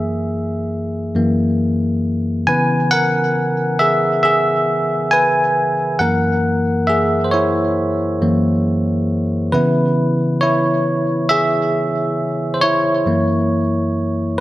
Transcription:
Already playing: F#2 E3 A#3 G#4 E5
1.15 F#2 E3 A#3
2.47 C#3 E3 B3 B4 G#5
2.91 A#4 F#5
3.79 G#4 E5
4.23 G#4 E5
5.11 B4 G#5
5.99 F#2 E3 A#3 A#4 F#5
6.87 G#4 E5
7.24 C5
7.31 E4 C#5
8.21 F#2 E3 A#3
9.52 C#3 E3 B3 E4 B4
10.41 E4 C#5
11.29 G#4 E5
12.54 C5
12.62 E4 C#5
13.06 F#2 E3 A#3

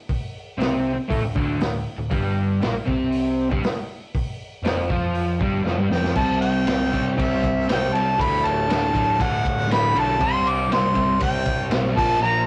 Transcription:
0.09 kick, open hi-hat
0.58 C2 C3 C4, snare, open hi-hat
0.95 muted overdriven electric guitar stroke, muted picked electric bass stroke
1.08 A1 A2 A3, kick, open hi-hat
1.20 D1 D2
1.35 D1 D2 D3, kick
1.58 D1 D2, snare, open hi-hat
1.98 D1 D2
2.10 G1 G2 G3, kick, open hi-hat
2.61 A#1 A#2 A#3, snare, open hi-hat
2.75 muted overdriven electric guitar stroke, muted picked electric bass stroke
2.86 C2 C3 C4, kick
3.12 open hi-hat
3.50 G1 G2 G3, kick
3.63 muted picked electric bass stroke, muted overdriven electric guitar stroke, snare, open hi-hat
4.15 kick, open hi-hat
4.63 F1 F2 F3, snare, open hi-hat
4.90 F2 F3 F4, kick
5.15 open hi-hat
5.40 G1 G2 G3, kick
5.63 F1 F2 F3, snare
5.78 G1 G2 G3
5.90 F1 F2 F3 G5, snare
6.04 snare
6.15 C2 C3 G3 C4 A5, kick, crash
6.41 C2 G5, ride
6.65 C2 C3 G3 C4, snare, ride
6.82 snare
6.90 C2 C3 G3 C4, kick, ride
7.16 C2 C3 G3 C4 E5, kick, ride
7.43 C2, kick, ride
7.68 C2 C3 G3 C4 G5, snare, ride
7.83 snare
7.92 C2 C3 G3 C4 A5, ride
8.16 D1 D2 A2 D3, kick
8.21 B5, ride
8.45 D1 A5, ride
8.67 D1 D2 A2 D3, ride
8.71 snare
8.93 D1 D2 A2 D3, kick, ride
9.18 D1 D2 A2 D3, kick, ride
9.23 F#5
9.45 D1, kick, ride
9.68 D1 D2 A2 D3, ride
9.72 B5, snare
9.93 B1 D2 A2 D3, ride
9.99 A5
10.17 C2 C3 G3 C4, kick, crash
10.24 C6
10.43 C2
10.47 D6, ride
10.68 C2 C3 G3 C4
10.72 C6, snare, ride
10.94 C2 C3 G3 C4, kick, ride
11.19 C2 C3 G3 C4 G5, kick, ride
11.46 C2, kick, ride
11.70 B1 C3 G3 C4, snare, ride
11.87 snare
11.95 A#1 A#2 F3 A#3 A5, kick, crash
12.21 A#1 A#2 F3 A#3 A#5

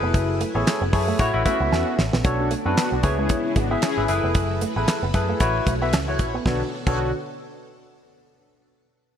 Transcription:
Already playing: F#3 A3 E4 G#4 A4 B4 G#5
0.03 F1 B3
0.14 F#1, kick, closed hi-hat
0.29 muted clean electric guitar stroke
0.40 A3, closed hi-hat
0.54 A1 B3 E4 G#4 A4 C#5
0.67 snare, clap, closed hi-hat
0.81 F#1 B3
0.93 F#2 E4 G#4 A4 C#5, muted clean electric guitar stroke, kick, open hi-hat
1.08 A3
1.19 A2 A3 C#4 E4 F#4 B4 C#5, muted clean electric guitar stroke, kick, closed hi-hat
1.34 A1 E4 F#4 B4 E5
1.45 A3 B3 C#4 E4 F#4 B4 E5, kick, closed hi-hat
1.60 C#2 B3
1.72 E2 B3 C#4 F#4, snare
1.98 A1, muted clean electric guitar stroke, snare
2.13 A#1 B3, snare
2.24 B1 A3 B3 D4 F#4 A4 C#5, kick, closed hi-hat
2.40 D4 F#4 A4, muted clean electric guitar stroke
2.51 A3, closed hi-hat
2.65 F#2 A3 B3 C#4 D4 E4 F#4 A4 B4
2.77 B3 D4 F#4, snare, clap, closed hi-hat
2.92 B1 B3 D4 F#4
3.03 C#2 C#3 G#3 E4 G#4 B4 C#5, muted clean electric guitar stroke, kick, closed hi-hat
3.18 G#3 C#4 E4 G#4
3.29 muted clean electric guitar stroke, kick, closed hi-hat
3.45 B3 C#4 E4
3.56 G#1 G#3 B3 D4 F#4, kick, closed hi-hat
3.70 B3 E4 G#4 B4 E5
3.82 C#4 E4 G#4, snare, clap, closed hi-hat
3.97 G#1 E4 G#4 B4 E5
4.08 F#1 F#3 A3 E4 G#4 A4 B4 G#5, muted clean electric guitar stroke, closed hi-hat
4.24 F1 B3
4.35 F#1, kick, closed hi-hat
4.50 muted clean electric guitar stroke
4.61 A3, closed hi-hat
4.76 A1 B3 E4 G#4 A4 B4
4.88 snare, clap, closed hi-hat
5.03 F#1 B3
5.14 F#2 E4 G#4 A4 B4, muted clean electric guitar stroke, kick, closed hi-hat
5.29 A3
5.40 A1 A3 C#4 E4 F#4 B4 C#5, muted clean electric guitar stroke, kick, closed hi-hat
5.67 B1 A3, kick, closed hi-hat
5.81 B3 E4 F#4 B4 E5
5.93 C#2 C#4, snare, clap, closed hi-hat
6.08 E4 F#4 B4 C#5
6.19 A#1, muted clean electric guitar stroke, kick, closed hi-hat
6.34 B3
6.45 B1 B2 D3 B3 D4 F#4 A4 C#5, kick, snare
6.87 B1 D3 B3 D4 F#4 A4 C#5, kick, crash

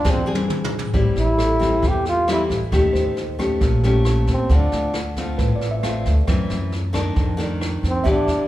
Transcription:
Already playing: D4
0.04 E2 E3 C4 D4 G#4, kick, snare
0.10 C4
0.26 C4 D4 G#4
0.35 high tom
0.49 G#4, mid tom
0.64 mid tom
0.79 floor tom
0.93 A1 A2 G3 C4 E4, kick, snare
1.16 A1 E4, snare
1.38 A4, cross-stick, snare
1.59 G3 C4 E4, kick, snare
1.82 E2 E3, kick, snare
1.88 G4
2.05 F4, snare
2.28 G3 C4 E4, cross-stick, snare
2.32 E4
2.50 A1, kick, snare
2.72 D#2 D#3 A3 C#4 G4, kick, cross-stick, snare
2.93 D#2 C5, snare
3.17 snare
3.39 A3 C#4 G4, kick, cross-stick, snare
3.61 A#1 A#2, kick, snare
3.83 A3 C#4 G4, snare
4.05 cross-stick, snare
4.27 D#2, kick, snare
4.31 C4
4.49 D2 D3 A3 C4 F4, kick, snare
4.56 D4
4.72 D2, snare
4.94 cross-stick, snare
5.16 A3 C4 F4, kick, snare
5.38 A1 A2 B4, kick, snare
5.56 D5
5.61 snare
5.71 E5
5.83 A3 C4 F4, cross-stick, snare
6.05 D2, kick, snare
6.27 F#2 E3 A3 C4, kick, cross-stick, snare
6.50 F#2, snare
6.72 snare
6.93 D#3 A3 D4, kick, cross-stick, snare
7.16 F2, kick, snare
7.37 D#3 A3 D4, snare
7.61 cross-stick, snare
7.83 F2, kick, snare
7.88 C4
8.04 E2 E3 B3 D4 G4 E5, kick, snare
8.10 D4
8.27 E2, snare

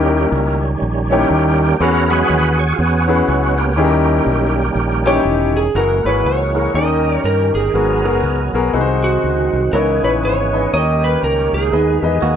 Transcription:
Already playing: D#2 D#3 G3 A#3 C#4 D#4 E4 G4 A#4
0.32 C#2
0.82 A#1
1.11 A#3 C#4 D#4 E4 G4 C#5
1.30 D#2
1.80 E2 E3 C#4 E4 F#4 G#4 A#4 B4
2.09 F#3 G#3 C#4 F#4 G#4 B4
2.30 D#2
2.59 C#5
2.73 F4
2.79 E2 B3 C#4 F#4
3.08 C#4 E4 F#4 G#4 B4
3.28 C#2 F#3 G#3 C#4
3.58 A#3 C#4 G4
3.77 D#2 D#3 G3 C#4 D#4 E4 G4 G#4
3.84 A#4
4.27 B1
4.75 A#1
5.05 E3 G3 C#4 D#4 E4 G4 C#5
5.25 E1
5.57 G#4
5.75 F#1 E3 G#3 A#3 E4 F#4 G#4 A#4
6.05 G#1 E4 F#4 G#4 B4 C#5
6.25 C#2 C#5
6.54 E4 F#4 G#4 A#4
6.74 D#2 D#3 G3 C#4 D#4 G4 G#4 A#4 D#5
6.82 A#4
7.24 G2 A#4
7.54 G1 G#4
7.74 G#1 G#2 F#3 G#3 B3 F#4 G#4 A#4
8.04 F#1 B3 F#4 G#4 A#4
8.23 C#2
8.54 B1 B3 F#4 G#4 A#4
8.73 C2 C3 D#3 F#3 G#3 C4 D#4 F#4 G#4 B4 D#5
8.81 C5
9.04 F#4
9.24 C#2
9.53 C2
9.73 C#2 C#3 E3 B3 C#4 D#4 E4 G#4 A#4 B4 C#5
10.03 A#1 D#4 E4 B4 C#5
10.23 G#1 C#5
10.53 D#4 E4 B4 D#5
10.72 D#2 D#3 G3 A#3 D#4 E4 G4 A#4 C#5 D#5
10.79 G4
11.04 B4
11.23 C#2 A#4
11.53 C#2 G#4
11.72 D#2 D#3 G#3 B3 D#4 G#4 B4 D#5
11.99 E2 D#4 G4 G#4
12.03 B4 D#5
12.22 D#2 A#3 F#4

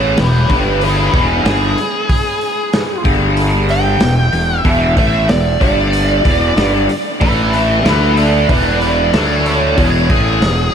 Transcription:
Already playing: A1 A2 E3 A3 G#4 C#5
0.17 E1 E2 B2 G4 B4, snare, open hi-hat
0.49 G1 G2 D3 G3 G4 B4, kick, open hi-hat
0.81 E4 G#4, open hi-hat
1.13 E1 E2 B2 E3 E4 G#4, kick, open hi-hat
1.44 G1 G2 D3 G3 G#4, snare, open hi-hat
1.78 open hi-hat
2.09 kick, open hi-hat
2.41 open hi-hat
2.73 snare, open hi-hat
3.04 G1 G2 D3 G3, kick, open hi-hat
3.37 open hi-hat
3.69 G5, open hi-hat
4.00 E1 E2 B2, snare, open hi-hat
4.33 E1 E2 B2, open hi-hat
4.59 E5
4.65 E1 E2 B2 E3, kick, open hi-hat
4.96 A1 A2 E3 A3 E5, kick, open hi-hat
5.29 E1 E2 B2 D5, snare, open hi-hat
5.60 G1 G2 D3 G3 D5, kick, open hi-hat
5.93 open hi-hat
6.24 E1 E2 B2 E3, kick, open hi-hat
6.57 G1 G2 D3 G3, snare, open hi-hat
6.89 open hi-hat
7.21 A1 A2 E3 A3 B4 E5, kick, open hi-hat
7.53 B4 E5, open hi-hat
7.84 D2 D3 A3 D4 B4 E5, snare, open hi-hat
8.17 A4 D5, open hi-hat
8.49 E1 E2 B2 E3 B4 D5, kick, open hi-hat
8.81 B4 D5, open hi-hat
9.13 D2 D3 A3 D4 A4 C#5, snare, open hi-hat
9.46 A4 C#5, open hi-hat
9.78 E1 E2 B2 E3 G#4 C#5, kick, open hi-hat
10.10 A1 A2 E3 A3 G#4, kick, open hi-hat
10.41 E1 E2 B2, snare, open hi-hat

